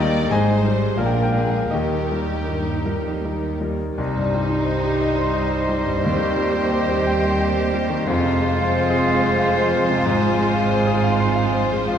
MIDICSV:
0, 0, Header, 1, 13, 480
1, 0, Start_track
1, 0, Key_signature, -3, "major"
1, 0, Tempo, 665188
1, 712, Tempo, 749064
1, 1180, Time_signature, 3, 2, 24, 8
1, 2631, Key_signature, -3, "minor"
1, 2632, Tempo, 700117
1, 3112, Tempo, 681818
1, 5512, Tempo, 658617
1, 8345, End_track
2, 0, Start_track
2, 0, Title_t, "Flute"
2, 0, Program_c, 0, 73
2, 2621, Note_on_c, 0, 75, 54
2, 5499, Note_on_c, 0, 77, 64
2, 5509, Note_off_c, 0, 75, 0
2, 6955, Note_off_c, 0, 77, 0
2, 6959, Note_on_c, 0, 80, 74
2, 8169, Note_off_c, 0, 80, 0
2, 8345, End_track
3, 0, Start_track
3, 0, Title_t, "Cor anglais"
3, 0, Program_c, 1, 69
3, 2630, Note_on_c, 1, 72, 52
3, 5481, Note_off_c, 1, 72, 0
3, 5517, Note_on_c, 1, 72, 62
3, 8169, Note_off_c, 1, 72, 0
3, 8345, End_track
4, 0, Start_track
4, 0, Title_t, "Violin section"
4, 0, Program_c, 2, 48
4, 0, Note_on_c, 2, 75, 55
4, 196, Note_off_c, 2, 75, 0
4, 221, Note_on_c, 2, 72, 52
4, 680, Note_off_c, 2, 72, 0
4, 711, Note_on_c, 2, 70, 53
4, 2468, Note_off_c, 2, 70, 0
4, 2638, Note_on_c, 2, 72, 54
4, 5486, Note_off_c, 2, 72, 0
4, 5505, Note_on_c, 2, 72, 64
4, 8345, Note_off_c, 2, 72, 0
4, 8345, End_track
5, 0, Start_track
5, 0, Title_t, "Grand piano"
5, 0, Program_c, 3, 0
5, 0, Control_c, 3, 64, 127
5, 0, Note_on_c, 3, 39, 59
5, 0, Note_on_c, 3, 55, 46
5, 0, Note_on_c, 3, 75, 51
5, 0, Note_on_c, 3, 79, 56
5, 0, Note_on_c, 3, 82, 75
5, 195, Note_off_c, 3, 82, 0
5, 198, Note_off_c, 3, 79, 0
5, 206, Note_off_c, 3, 55, 0
5, 207, Note_off_c, 3, 75, 0
5, 212, Note_off_c, 3, 39, 0
5, 225, Note_on_c, 3, 44, 56
5, 225, Note_on_c, 3, 80, 76
5, 232, Note_on_c, 3, 75, 56
5, 234, Note_on_c, 3, 72, 56
5, 241, Control_c, 3, 64, 0
5, 376, Control_c, 3, 64, 127
5, 460, Note_off_c, 3, 72, 0
5, 468, Note_on_c, 3, 55, 44
5, 471, Note_on_c, 3, 72, 47
5, 682, Note_off_c, 3, 80, 0
5, 686, Note_off_c, 3, 75, 0
5, 689, Note_off_c, 3, 55, 0
5, 690, Note_off_c, 3, 72, 0
5, 697, Note_off_c, 3, 44, 0
5, 702, Note_on_c, 3, 77, 52
5, 709, Note_on_c, 3, 70, 50
5, 712, Note_on_c, 3, 46, 56
5, 715, Note_on_c, 3, 74, 46
5, 723, Control_c, 3, 64, 0
5, 757, Note_on_c, 3, 79, 51
5, 761, Note_off_c, 3, 77, 0
5, 813, Note_on_c, 3, 77, 49
5, 815, Note_off_c, 3, 79, 0
5, 838, Control_c, 3, 64, 127
5, 867, Note_on_c, 3, 79, 52
5, 870, Note_off_c, 3, 77, 0
5, 925, Note_off_c, 3, 79, 0
5, 929, Note_on_c, 3, 77, 51
5, 937, Note_off_c, 3, 70, 0
5, 947, Note_on_c, 3, 56, 36
5, 947, Note_on_c, 3, 70, 43
5, 983, Note_on_c, 3, 79, 51
5, 984, Note_off_c, 3, 77, 0
5, 1039, Note_off_c, 3, 79, 0
5, 1040, Note_on_c, 3, 77, 55
5, 1156, Note_off_c, 3, 74, 0
5, 1159, Note_off_c, 3, 56, 0
5, 1159, Note_off_c, 3, 70, 0
5, 1166, Note_off_c, 3, 46, 0
5, 1170, Note_off_c, 3, 77, 0
5, 1175, Note_on_c, 3, 75, 45
5, 1183, Note_on_c, 3, 67, 33
5, 1187, Note_on_c, 3, 70, 37
5, 1194, Control_c, 3, 64, 0
5, 1194, Note_on_c, 3, 39, 49
5, 1318, Control_c, 3, 64, 127
5, 1427, Note_off_c, 3, 70, 0
5, 1436, Note_on_c, 3, 55, 33
5, 1436, Note_on_c, 3, 70, 36
5, 1647, Note_off_c, 3, 55, 0
5, 1647, Note_off_c, 3, 70, 0
5, 1666, Note_on_c, 3, 63, 31
5, 1672, Note_on_c, 3, 70, 34
5, 1882, Note_off_c, 3, 63, 0
5, 1885, Note_off_c, 3, 70, 0
5, 1911, Note_on_c, 3, 70, 35
5, 1912, Note_on_c, 3, 55, 33
5, 2118, Note_off_c, 3, 75, 0
5, 2122, Note_off_c, 3, 67, 0
5, 2126, Note_off_c, 3, 55, 0
5, 2126, Note_off_c, 3, 70, 0
5, 2162, Note_on_c, 3, 63, 33
5, 2165, Note_on_c, 3, 70, 35
5, 2376, Note_off_c, 3, 63, 0
5, 2378, Note_off_c, 3, 70, 0
5, 2391, Note_on_c, 3, 55, 32
5, 2397, Note_on_c, 3, 70, 33
5, 2607, Note_off_c, 3, 55, 0
5, 2610, Note_off_c, 3, 70, 0
5, 2613, Note_off_c, 3, 39, 0
5, 2629, Note_on_c, 3, 36, 57
5, 2645, Control_c, 3, 64, 0
5, 2762, Note_on_c, 3, 43, 41
5, 2780, Control_c, 3, 64, 127
5, 2879, Note_on_c, 3, 55, 45
5, 2950, Note_off_c, 3, 43, 0
5, 2981, Note_on_c, 3, 63, 44
5, 3067, Note_off_c, 3, 55, 0
5, 3096, Note_on_c, 3, 72, 45
5, 3177, Note_off_c, 3, 63, 0
5, 3224, Note_on_c, 3, 67, 48
5, 3296, Note_off_c, 3, 72, 0
5, 3344, Note_on_c, 3, 75, 49
5, 3420, Note_off_c, 3, 67, 0
5, 3469, Note_on_c, 3, 84, 48
5, 3540, Note_off_c, 3, 75, 0
5, 3572, Note_on_c, 3, 75, 50
5, 3665, Note_off_c, 3, 84, 0
5, 3701, Note_on_c, 3, 72, 45
5, 3778, Note_off_c, 3, 75, 0
5, 3820, Note_on_c, 3, 55, 43
5, 3903, Note_off_c, 3, 72, 0
5, 3939, Note_on_c, 3, 43, 39
5, 4023, Note_off_c, 3, 55, 0
5, 4049, Note_off_c, 3, 36, 0
5, 4067, Note_on_c, 3, 39, 54
5, 4069, Note_off_c, 3, 43, 0
5, 4091, Control_c, 3, 64, 0
5, 4178, Note_on_c, 3, 51, 43
5, 4195, Control_c, 3, 64, 127
5, 4296, Note_on_c, 3, 55, 43
5, 4379, Note_off_c, 3, 51, 0
5, 4416, Note_on_c, 3, 67, 48
5, 4498, Note_off_c, 3, 55, 0
5, 4549, Note_on_c, 3, 72, 49
5, 4617, Note_off_c, 3, 67, 0
5, 4660, Note_on_c, 3, 67, 50
5, 4743, Note_off_c, 3, 72, 0
5, 4789, Note_on_c, 3, 79, 53
5, 4858, Note_off_c, 3, 67, 0
5, 4911, Note_on_c, 3, 84, 50
5, 4983, Note_off_c, 3, 79, 0
5, 5028, Note_on_c, 3, 79, 54
5, 5104, Note_off_c, 3, 84, 0
5, 5143, Note_on_c, 3, 72, 47
5, 5223, Note_off_c, 3, 79, 0
5, 5263, Note_on_c, 3, 55, 47
5, 5340, Note_off_c, 3, 72, 0
5, 5372, Note_on_c, 3, 51, 46
5, 5458, Note_off_c, 3, 55, 0
5, 5476, Note_off_c, 3, 39, 0
5, 5498, Note_on_c, 3, 41, 63
5, 5500, Note_off_c, 3, 51, 0
5, 5524, Control_c, 3, 64, 0
5, 5612, Note_on_c, 3, 48, 47
5, 5635, Control_c, 3, 64, 127
5, 5736, Note_on_c, 3, 56, 51
5, 5816, Note_off_c, 3, 48, 0
5, 5871, Note_on_c, 3, 65, 52
5, 5938, Note_off_c, 3, 56, 0
5, 5990, Note_on_c, 3, 72, 54
5, 6067, Note_off_c, 3, 65, 0
5, 6102, Note_on_c, 3, 68, 57
5, 6189, Note_off_c, 3, 72, 0
5, 6226, Note_on_c, 3, 77, 58
5, 6306, Note_off_c, 3, 68, 0
5, 6347, Note_on_c, 3, 84, 58
5, 6428, Note_off_c, 3, 77, 0
5, 6466, Note_on_c, 3, 77, 61
5, 6548, Note_off_c, 3, 84, 0
5, 6589, Note_on_c, 3, 72, 56
5, 6667, Note_off_c, 3, 77, 0
5, 6714, Note_on_c, 3, 56, 56
5, 6788, Note_off_c, 3, 72, 0
5, 6829, Note_on_c, 3, 48, 51
5, 6910, Note_off_c, 3, 56, 0
5, 6928, Note_off_c, 3, 41, 0
5, 6942, Note_on_c, 3, 44, 77
5, 6956, Note_off_c, 3, 48, 0
5, 6977, Control_c, 3, 64, 0
5, 7062, Note_on_c, 3, 53, 54
5, 7075, Control_c, 3, 64, 127
5, 7183, Note_on_c, 3, 56, 61
5, 7263, Note_off_c, 3, 53, 0
5, 7292, Note_on_c, 3, 65, 59
5, 7383, Note_off_c, 3, 56, 0
5, 7415, Note_on_c, 3, 72, 62
5, 7497, Note_off_c, 3, 65, 0
5, 7536, Note_on_c, 3, 68, 67
5, 7618, Note_off_c, 3, 72, 0
5, 7660, Note_on_c, 3, 77, 70
5, 7738, Note_off_c, 3, 68, 0
5, 7779, Note_on_c, 3, 84, 63
5, 7859, Note_off_c, 3, 77, 0
5, 7893, Note_on_c, 3, 77, 65
5, 7978, Note_off_c, 3, 84, 0
5, 8016, Note_on_c, 3, 72, 61
5, 8094, Note_off_c, 3, 77, 0
5, 8153, Note_on_c, 3, 56, 59
5, 8215, Note_off_c, 3, 72, 0
5, 8271, Note_on_c, 3, 53, 57
5, 8344, Note_off_c, 3, 56, 0
5, 8345, Note_off_c, 3, 44, 0
5, 8345, Note_off_c, 3, 53, 0
5, 8345, End_track
6, 0, Start_track
6, 0, Title_t, "Violin section"
6, 0, Program_c, 4, 48
6, 0, Note_on_c, 4, 74, 59
6, 219, Note_on_c, 4, 72, 54
6, 228, Note_off_c, 4, 74, 0
6, 705, Note_on_c, 4, 70, 51
6, 709, Note_off_c, 4, 72, 0
6, 932, Note_on_c, 4, 68, 42
6, 938, Note_off_c, 4, 70, 0
6, 1167, Note_on_c, 4, 67, 50
6, 1170, Note_off_c, 4, 68, 0
6, 2361, Note_off_c, 4, 67, 0
6, 2621, Note_on_c, 4, 63, 55
6, 4045, Note_off_c, 4, 63, 0
6, 4071, Note_on_c, 4, 67, 57
6, 5478, Note_off_c, 4, 67, 0
6, 5512, Note_on_c, 4, 65, 63
6, 8345, Note_off_c, 4, 65, 0
6, 8345, End_track
7, 0, Start_track
7, 0, Title_t, "Clarinet"
7, 0, Program_c, 5, 71
7, 2634, Note_on_c, 5, 67, 47
7, 5484, Note_off_c, 5, 67, 0
7, 5506, Note_on_c, 5, 65, 59
7, 8164, Note_off_c, 5, 65, 0
7, 8345, End_track
8, 0, Start_track
8, 0, Title_t, "French horn section"
8, 0, Program_c, 6, 60
8, 0, Note_on_c, 6, 58, 71
8, 198, Note_off_c, 6, 58, 0
8, 203, Note_on_c, 6, 56, 69
8, 692, Note_on_c, 6, 53, 63
8, 701, Note_off_c, 6, 56, 0
8, 1166, Note_on_c, 6, 51, 47
8, 1171, Note_off_c, 6, 53, 0
8, 2139, Note_off_c, 6, 51, 0
8, 2625, Note_on_c, 6, 63, 47
8, 2631, Note_on_c, 6, 55, 49
8, 4047, Note_off_c, 6, 63, 0
8, 4086, Note_on_c, 6, 60, 54
8, 5482, Note_off_c, 6, 55, 0
8, 5514, Note_on_c, 6, 56, 61
8, 6936, Note_off_c, 6, 56, 0
8, 6958, Note_off_c, 6, 60, 0
8, 6959, Note_on_c, 6, 53, 66
8, 6966, Note_on_c, 6, 60, 67
8, 8262, Note_off_c, 6, 53, 0
8, 8345, Note_off_c, 6, 60, 0
8, 8345, End_track
9, 0, Start_track
9, 0, Title_t, "Viola section"
9, 0, Program_c, 7, 48
9, 0, Note_on_c, 7, 55, 52
9, 0, Note_on_c, 7, 63, 54
9, 687, Note_off_c, 7, 55, 0
9, 688, Note_off_c, 7, 63, 0
9, 714, Note_on_c, 7, 62, 47
9, 718, Note_on_c, 7, 56, 47
9, 1155, Note_off_c, 7, 62, 0
9, 1157, Note_off_c, 7, 56, 0
9, 1175, Note_on_c, 7, 63, 37
9, 1176, Note_on_c, 7, 55, 40
9, 2466, Note_off_c, 7, 55, 0
9, 2466, Note_off_c, 7, 63, 0
9, 2629, Note_on_c, 7, 55, 49
9, 5481, Note_off_c, 7, 55, 0
9, 5513, Note_on_c, 7, 56, 57
9, 8345, Note_off_c, 7, 56, 0
9, 8345, End_track
10, 0, Start_track
10, 0, Title_t, "Bassoon"
10, 0, Program_c, 8, 70
10, 2636, Note_on_c, 8, 55, 51
10, 5485, Note_off_c, 8, 55, 0
10, 5515, Note_on_c, 8, 56, 61
10, 8168, Note_off_c, 8, 56, 0
10, 8345, End_track
11, 0, Start_track
11, 0, Title_t, "Timpani"
11, 0, Program_c, 10, 47
11, 4084, Note_on_c, 10, 51, 73
11, 4769, Note_off_c, 10, 51, 0
11, 8345, End_track
12, 0, Start_track
12, 0, Title_t, "Cello section"
12, 0, Program_c, 11, 48
12, 0, Note_on_c, 11, 39, 62
12, 222, Note_off_c, 11, 39, 0
12, 230, Note_on_c, 11, 44, 55
12, 704, Note_off_c, 11, 44, 0
12, 715, Note_on_c, 11, 46, 51
12, 1172, Note_off_c, 11, 46, 0
12, 1180, Note_on_c, 11, 39, 43
12, 1607, Note_off_c, 11, 39, 0
12, 1665, Note_on_c, 11, 43, 45
12, 2001, Note_off_c, 11, 43, 0
12, 2027, Note_on_c, 11, 41, 41
12, 2147, Note_off_c, 11, 41, 0
12, 2147, Note_on_c, 11, 39, 41
12, 2632, Note_off_c, 11, 39, 0
12, 2636, Note_on_c, 11, 36, 56
12, 4053, Note_off_c, 11, 36, 0
12, 4082, Note_on_c, 11, 39, 55
12, 5511, Note_on_c, 11, 41, 65
12, 5512, Note_off_c, 11, 39, 0
12, 6935, Note_off_c, 11, 41, 0
12, 6961, Note_on_c, 11, 44, 75
12, 8345, Note_off_c, 11, 44, 0
12, 8345, End_track
13, 0, Start_track
13, 0, Title_t, "Double bass section"
13, 0, Program_c, 12, 48
13, 0, Note_on_c, 12, 39, 57
13, 218, Note_off_c, 12, 39, 0
13, 224, Note_on_c, 12, 32, 56
13, 701, Note_off_c, 12, 32, 0
13, 711, Note_on_c, 12, 34, 51
13, 1170, Note_off_c, 12, 34, 0
13, 1184, Note_on_c, 12, 39, 44
13, 2470, Note_off_c, 12, 39, 0
13, 2632, Note_on_c, 12, 36, 53
13, 4051, Note_off_c, 12, 36, 0
13, 4071, Note_on_c, 12, 39, 57
13, 5507, Note_off_c, 12, 39, 0
13, 5507, Note_on_c, 12, 29, 62
13, 6932, Note_off_c, 12, 29, 0
13, 6960, Note_on_c, 12, 32, 70
13, 8345, Note_off_c, 12, 32, 0
13, 8345, End_track
0, 0, End_of_file